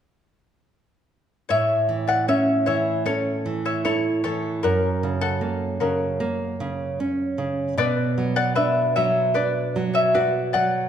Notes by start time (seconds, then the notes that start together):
1.49 A2 C#5 E5
1.89 E3
2.08 D5 F#5
2.28 C#4 C#5 E5
2.66 E3 C#5 E5
3.06 C#4 A4 C#5
3.46 E3
3.65 C#5 E5
3.85 E4 A4 C#5
4.24 E3 A4 C#5
4.63 F#2 F#4 A#4
5.03 C#3
5.21 F#4 A4
5.41 A#3
5.80 C#3 F#4 A#4
6.20 A#3
6.60 C#3
7.00 C#4
7.38 C#3
7.78 B2 B4 D5
8.18 F#3
8.36 D5 F#5
8.55 D4 B4 E5
8.96 F#3 C#5 E5
9.34 D4 B4 D5
9.76 F#3
9.94 C#5 E5
10.14 F#4 B4 D5
10.53 F#3 D5 F#5